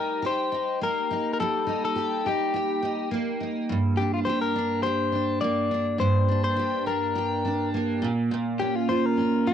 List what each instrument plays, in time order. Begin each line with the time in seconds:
Already playing: steel-string acoustic guitar G3 D#4 G4, clean electric guitar A#4
0.22 steel-string acoustic guitar G4
0.27 clean electric guitar C5
0.52 steel-string acoustic guitar D#4
0.81 steel-string acoustic guitar A#3, clean electric guitar A#4
1.10 steel-string acoustic guitar D#4
1.33 clean electric guitar A#4
1.40 steel-string acoustic guitar G3, clean electric guitar A4
1.67 steel-string acoustic guitar D#4
1.85 clean electric guitar A4
1.96 steel-string acoustic guitar G4
2.26 steel-string acoustic guitar D#4, clean electric guitar G4
2.54 steel-string acoustic guitar G4
2.82 steel-string acoustic guitar D#4
3.11 steel-string acoustic guitar A#3
3.41 steel-string acoustic guitar D#4
3.69 steel-string acoustic guitar G2
3.97 steel-string acoustic guitar D4, clean electric guitar G4
4.14 clean electric guitar F4
4.25 steel-string acoustic guitar G4, clean electric guitar C5
4.42 clean electric guitar A#4
4.56 steel-string acoustic guitar D4
4.83 steel-string acoustic guitar G4, clean electric guitar C5
5.12 steel-string acoustic guitar D4
5.41 steel-string acoustic guitar A#3, clean electric guitar D5
5.71 steel-string acoustic guitar D4
5.98 steel-string acoustic guitar G2, clean electric guitar C5
6.28 steel-string acoustic guitar D4
6.44 clean electric guitar C5
6.56 steel-string acoustic guitar G4
6.86 steel-string acoustic guitar D4, clean electric guitar A#4
7.15 steel-string acoustic guitar G4
7.45 steel-string acoustic guitar D4
7.74 steel-string acoustic guitar A#3
8.02 steel-string acoustic guitar A#2
8.31 steel-string acoustic guitar A#2
8.59 steel-string acoustic guitar C#4, clean electric guitar G4
8.76 clean electric guitar F4
8.89 steel-string acoustic guitar F4, clean electric guitar C5
9.06 clean electric guitar A#4
9.17 steel-string acoustic guitar C#4
9.47 steel-string acoustic guitar F4, clean electric guitar G4